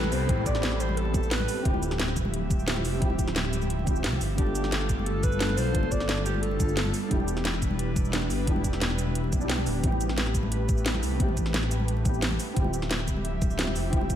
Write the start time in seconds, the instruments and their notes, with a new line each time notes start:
Already playing: detuned saw bass A1, analog synth pad G3 A4 B5, felt piano B3 C4 E4 G4, alto saxophone B4, downlifter
0.04 snare, high conga
0.12 detuned saw bass C2, alto saxophone C5, open hi-hat, shaker
0.21 muted conga
0.26 detuned saw bass A1, felt piano B3 C4, kick, closed hi-hat
0.30 felt piano E4 G4
0.37 high conga
0.46 alto saxophone D5, kick, closed hi-hat, shaker
0.55 snare
0.63 snare, closed hi-hat, high conga
0.72 snare
0.80 alto saxophone C5, closed hi-hat, muted conga, shaker
0.89 high conga
0.97 alto saxophone A4, closed hi-hat
1.05 muted conga
1.11 felt piano B3 C4, kick, closed hi-hat, high conga, shaker
1.15 felt piano E4 G4
1.23 shaker
1.31 alto saxophone B4, snare, closed hi-hat
1.40 high conga
1.48 open hi-hat, shaker
1.62 detuned saw bass D1, analog synth pad F3 G4 E5, felt piano C4 E4, alto saxophone G4, kick, closed hi-hat
1.66 felt piano F4 G4
1.74 high conga
1.83 closed hi-hat, shaker
1.91 snare
1.99 snare, closed hi-hat, high conga
2.08 snare
2.16 kick, closed hi-hat, muted conga, shaker
2.25 high conga
2.34 closed hi-hat
2.50 kick, closed hi-hat, high conga, shaker
2.59 shaker
2.66 felt piano C4 E4 F4 G4, snare, closed hi-hat
2.76 snare, high conga
2.85 detuned saw bass F1, open hi-hat, shaker
2.94 muted conga
2.98 detuned saw bass D1, felt piano C4 E4, kick, closed hi-hat
3.03 felt piano F4 G4
3.10 high conga
3.19 kick, closed hi-hat, shaker
3.28 snare
3.36 snare, closed hi-hat, high conga
3.45 snare
3.53 closed hi-hat, muted conga, shaker
3.62 high conga, shaker
3.70 closed hi-hat
3.79 muted conga
3.84 felt piano C4 E4, kick, closed hi-hat, high conga, shaker
3.88 felt piano F4 G4
3.96 shaker
4.04 detuned saw bass C2, snare, closed hi-hat
4.13 high conga
4.21 detuned saw bass G1, open hi-hat, shaker
4.35 detuned saw bass G1, analog synth pad G3 A3 F4 A4, felt piano B3 D4, alto saxophone G4, kick, closed hi-hat
4.39 felt piano F4 A4
4.47 high conga
4.55 closed hi-hat, shaker
4.64 snare
4.72 snare, closed hi-hat, high conga
4.81 snare
4.89 kick, closed hi-hat, muted conga, shaker
4.99 high conga
5.06 alto saxophone A4, closed hi-hat
5.23 alto saxophone B4, kick, closed hi-hat, high conga, shaker
5.32 shaker
5.39 felt piano B3 D4 F4 A4, snare, closed hi-hat
5.49 snare, high conga
5.57 detuned saw bass B1, alto saxophone C5, open hi-hat, shaker
5.67 muted conga
5.72 detuned saw bass G1, felt piano B3 D4, kick, closed hi-hat
5.76 felt piano F4 A4
5.83 high conga
5.92 alto saxophone D5, kick, closed hi-hat, shaker
6.00 snare
6.09 snare, closed hi-hat, high conga
6.18 snare
6.25 alto saxophone G4, closed hi-hat, muted conga, shaker
6.34 high conga
6.43 alto saxophone A4, closed hi-hat
6.51 muted conga
6.56 felt piano B3 D4, kick, closed hi-hat, high conga, shaker
6.61 felt piano F4 A4
6.69 shaker
6.77 alto saxophone A4, snare, closed hi-hat
6.85 high conga
6.94 open hi-hat, shaker
7.08 detuned saw bass E1, felt piano B3 D4, analog synth pad D4 E4 B4, alto saxophone G4, kick, closed hi-hat
7.12 felt piano E4 G4
7.20 high conga
7.28 closed hi-hat, shaker
7.37 snare
7.45 snare, closed hi-hat, high conga
7.54 snare
7.62 kick, closed hi-hat, muted conga, shaker
7.71 high conga
7.79 closed hi-hat
7.96 kick, closed hi-hat, high conga, shaker
8.05 shaker
8.12 felt piano B3 D4 E4 G4, snare, closed hi-hat
8.21 snare, high conga
8.30 detuned saw bass G1, open hi-hat, shaker
8.39 muted conga
8.44 detuned saw bass E1, felt piano B3 D4, kick, closed hi-hat
8.48 felt piano E4 G4
8.56 high conga
8.64 kick, closed hi-hat, shaker
8.73 snare
8.81 snare, closed hi-hat, high conga
8.90 snare
8.98 closed hi-hat, muted conga, shaker
9.07 high conga
9.15 closed hi-hat
9.24 muted conga
9.32 detuned saw bass B1, kick, closed hi-hat, high conga, shaker
9.38 felt piano B3 D4, shaker
9.42 felt piano E4 G4
9.49 snare, closed hi-hat
9.58 high conga
9.66 detuned saw bass D1, open hi-hat, shaker
9.80 detuned saw bass A1, analog synth pad A3 G4 B4, felt piano B3 C4, kick, closed hi-hat
9.85 felt piano E4 G4
9.92 high conga
10.01 closed hi-hat, shaker
10.09 snare
10.18 snare, closed hi-hat, high conga
10.26 snare
10.34 kick, closed hi-hat, muted conga, shaker
10.43 high conga
10.52 closed hi-hat
10.69 kick, closed hi-hat, high conga, shaker
10.78 shaker
10.84 felt piano B3 C4 E4 G4, snare, closed hi-hat
10.94 snare, high conga
11.03 detuned saw bass C2, open hi-hat, shaker
11.11 muted conga
11.17 detuned saw bass A1, felt piano B3 C4, kick, closed hi-hat
11.21 felt piano E4 G4
11.29 high conga
11.37 kick, closed hi-hat, shaker
11.46 snare
11.54 snare, closed hi-hat, high conga
11.63 snare
11.71 closed hi-hat, muted conga, shaker
11.80 high conga
11.88 closed hi-hat
11.97 muted conga
12.02 felt piano B3 C4, kick, closed hi-hat, high conga, shaker
12.06 felt piano E4 G4
12.14 shaker
12.22 snare, closed hi-hat
12.31 high conga
12.40 open hi-hat, shaker
12.53 detuned saw bass D1, analog synth pad F3 E5, felt piano C4 E4, kick, closed hi-hat
12.57 felt piano F4 G4
12.64 high conga
12.74 closed hi-hat, shaker
12.82 snare
12.91 snare, closed hi-hat, high conga
12.99 snare
13.07 kick, closed hi-hat, muted conga, shaker
13.17 high conga
13.25 closed hi-hat
13.42 kick, closed hi-hat, high conga, shaker
13.50 shaker
13.57 felt piano C4 E4 F4 G4, snare, closed hi-hat
13.67 snare, high conga
13.76 detuned saw bass F1, open hi-hat, shaker
13.84 muted conga
13.89 detuned saw bass D1, felt piano C4 E4, kick, closed hi-hat
13.94 felt piano F4 G4
14.01 high conga
14.10 kick, closed hi-hat, shaker